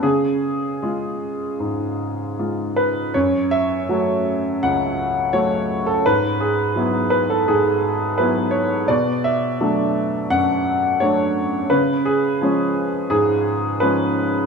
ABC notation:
X:1
M:4/4
L:1/16
Q:1/4=85
K:F#m
V:1 name="Grand piano"
G12- G2 B2 | c2 e6 f4 c3 A | B2 G4 B A G4 B2 c2 | d2 e6 f4 c4 |
B2 G6 G4 B2 z2 |]
V:2 name="Grand piano" clef=bass
C,4 [G,^E]4 G,,4 [G,E]4 | F,,4 [F,A,F]4 C,,4 [F,A,F]4 | G,,4 [F,B,E]4 G,,4 [F,B,E]4 | B,,4 [F,A,D]4 F,,4 [F,A,D]4 |
C,4 [^E,G,C]4 G,,4 [E,G,C]4 |]